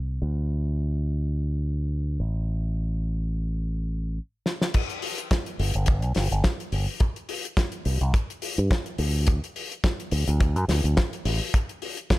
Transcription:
0.00 0.19 C2 medium
0.22 2.17 D2 medium
2.20 4.18 A1 medium
4.46 snare medium
4.62 snare medium
4.74 kick loud
4.74 closed hi-hat loud
4.74 crash loud
4.90 closed hi-hat medium
5.02 open hi-hat loud
5.18 closed hi-hat medium
5.31 kick loud
5.31 snare loud
5.31 closed hi-hat loud
5.46 closed hi-hat medium
5.59 5.72 G1 medium
5.59 open hi-hat loud
5.74 6.03 G1 loud
5.74 closed hi-hat medium
5.86 kick loud
5.86 closed hi-hat loud
6.02 6.14 B1 medium
6.02 closed hi-hat medium
6.15 6.29 G1 loud
6.15 snare medium
6.15 open hi-hat loud
6.32 6.42 G1 loud
6.32 closed hi-hat medium
6.44 kick loud
6.44 snare loud
6.44 closed hi-hat loud
6.60 closed hi-hat medium
6.72 6.85 G1 medium
6.72 open hi-hat loud
7.00 kick loud
7.00 closed hi-hat loud
7.16 closed hi-hat medium
7.29 open hi-hat loud
7.45 closed hi-hat medium
7.57 kick loud
7.57 snare loud
7.57 closed hi-hat loud
7.72 closed hi-hat medium
7.85 7.99 C2 loud
7.85 open hi-hat loud
8.01 8.12 C2 loud
8.01 closed hi-hat medium
8.14 kick loud
8.14 closed hi-hat medium
8.30 closed hi-hat medium
8.42 open hi-hat loud
8.58 8.68 G2 medium
8.58 closed hi-hat medium
8.71 kick loud
8.71 snare loud
8.71 closed hi-hat medium
8.86 closed hi-hat medium
8.98 9.38 D2 medium
8.98 open hi-hat loud
9.27 kick loud
9.27 closed hi-hat loud
9.44 closed hi-hat medium
9.56 open hi-hat loud
9.72 closed hi-hat medium
9.84 kick loud
9.84 snare loud
9.84 closed hi-hat loud
10.00 closed hi-hat medium
10.11 10.25 D2 loud
10.11 open hi-hat loud
10.28 10.56 D2 loud
10.28 closed hi-hat medium
10.40 kick loud
10.40 closed hi-hat medium
10.56 10.66 F#2 medium
10.56 closed hi-hat medium
10.68 10.82 D2 loud
10.68 snare medium
10.68 open hi-hat loud
10.84 10.95 D2 loud
10.84 closed hi-hat medium
10.97 kick loud
10.97 snare loud
10.97 closed hi-hat medium
11.13 closed hi-hat medium
11.25 11.38 A1 medium
11.25 open hi-hat loud
11.54 kick loud
11.54 closed hi-hat loud
11.69 closed hi-hat medium
11.82 open hi-hat loud
11.97 closed hi-hat medium
12.10 kick loud
12.10 snare loud
12.10 closed hi-hat loud

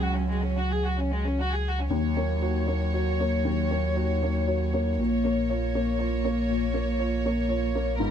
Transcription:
0.00 0.22 C#2 medium
0.00 1.90 C#2 medium
0.00 1.70 F#3 medium
0.00 0.29 C#4 soft
0.00 1.87 F#4 soft
0.00 0.14 F#4 soft
0.00 1.87 G#4 soft
0.14 0.27 C#4 soft
0.29 0.41 G#3 soft
0.43 0.55 C#4 soft
0.58 0.70 F#4 medium
0.71 0.83 G#4 medium
0.84 0.97 F#4 soft
0.98 1.10 C#4 soft
1.11 1.24 G#3 medium
1.25 1.38 C#4 medium
1.39 1.51 F#4 medium
1.52 1.64 G#4 medium
1.67 1.79 F#4 soft
1.80 1.92 C#4 soft
1.90 5.00 D#2 medium
1.90 3.42 D#2 medium
1.90 5.01 F#3 medium
1.90 4.96 C#5 medium
2.17 2.40 A#3 soft
2.17 2.40 C#5 soft
2.42 2.66 F#4 soft
2.42 2.66 C#5 soft
2.67 2.91 A#3 soft
2.67 2.91 C#5 soft
2.94 3.18 F#4 soft
2.94 3.17 C#5 soft
3.20 3.44 A#3 soft
3.20 3.44 C#5 soft
3.45 4.94 D#2 medium
3.70 3.94 A#3 soft
3.70 3.95 C#5 soft
3.97 4.20 F#4 soft
3.97 4.20 C#5 soft
4.22 4.45 A#3 soft
4.22 4.46 C#5 soft
4.47 4.71 F#4 soft
4.47 4.71 C#5 soft
4.74 4.96 A#3 soft
4.74 4.96 C#5 soft
4.98 8.01 A#1 medium
4.98 6.45 A#2 medium
4.98 7.99 A#3 medium
4.98 7.96 C#5 soft
5.24 5.47 A#3 soft
5.24 5.46 C#5 soft
5.49 5.71 F4 soft
5.49 5.72 C#5 soft
5.75 5.97 A#3 soft
5.75 5.97 C#5 soft
5.99 6.21 F4 soft
5.99 6.22 C#5 soft
6.25 6.47 A#3 soft
6.25 6.47 C#5 soft
6.49 7.95 A#2 medium
6.74 6.96 A#3 soft
6.74 6.97 C#5 soft
6.99 7.21 F4 soft
6.99 7.22 C#5 soft
7.25 7.47 A#3 soft
7.25 7.47 C#5 soft
7.49 7.71 F4 soft
7.49 7.72 C#5 soft
7.75 7.97 A#3 soft
7.75 7.97 C#5 soft
7.99 8.11 G#1 medium
7.99 8.11 G#2 medium
7.99 8.11 B3 medium
7.99 8.11 A#4 medium

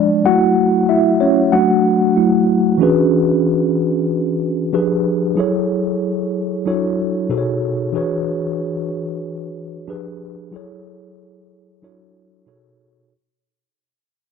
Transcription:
0.00 0.27 F3 medium
0.00 0.26 G#3 medium
0.00 0.26 D4 medium
0.00 0.26 D5 medium
0.24 1.49 F#3 medium
0.24 1.49 A3 medium
0.24 0.89 E4 medium
0.24 0.85 F#4 medium
0.24 0.91 F#5 loud
0.89 1.19 E4 medium
0.89 1.19 E5 medium
1.20 1.51 C#4 medium
1.20 1.50 C#5 medium
1.52 2.14 F#3 medium
1.52 2.14 A3 soft
1.52 2.14 D4 medium
1.52 2.45 F#4 medium
1.52 2.45 F#5 medium
2.16 2.78 F#3 medium
2.16 2.78 A3 soft
2.16 2.78 E4 medium
2.78 4.68 E3 medium
2.78 4.69 C#4 medium
2.78 4.69 D4 medium
2.78 4.70 F#4 medium
2.82 4.70 G#4 medium
2.82 4.71 B4 medium
4.73 5.38 F3 medium
4.73 5.38 D4 medium
4.73 5.38 G4 medium
4.73 5.36 G#4 medium
4.73 5.39 B4 medium
5.35 6.63 F#3 medium
5.35 6.64 E4 medium
5.35 6.64 G#4 medium
5.35 6.65 A4 medium
5.40 6.65 C#5 medium
6.65 7.31 F#3 medium
6.65 7.31 D4 medium
6.65 7.31 E4 medium
6.65 7.29 F#4 medium
6.65 7.30 A4 medium
6.65 7.32 C#5 medium
7.29 7.95 B2 medium
7.29 7.95 D#4 medium
7.29 7.93 F#4 medium
7.29 7.94 G#4 medium
7.29 7.95 A4 medium
7.29 7.39 C5 medium
7.38 7.96 C#5 medium
7.92 9.83 E3 medium
7.92 9.84 D4 medium
7.92 9.84 F#4 medium
7.92 9.85 G#4 medium
7.92 9.85 B4 medium
7.97 9.86 C#5 medium
9.88 10.53 F3 medium
9.88 10.53 D4 medium
9.88 10.53 G4 medium
9.88 10.52 G#4 medium
9.88 10.54 B4 medium
10.51 11.79 F#3 medium
10.51 11.79 E4 medium
10.51 11.80 G#4 medium
10.51 11.80 A4 medium
10.56 11.81 C#5 medium
11.82 12.47 F#3 medium
11.82 12.47 D4 medium
11.82 12.47 E4 medium
11.82 12.46 F#4 medium
11.82 12.46 A4 medium
11.82 12.47 C#5 medium
12.46 13.11 B2 medium
12.46 13.11 D#4 medium
12.46 13.11 F#4 medium
12.46 13.12 G#4 medium
12.46 13.12 A4 medium
12.46 13.12 C#5 medium

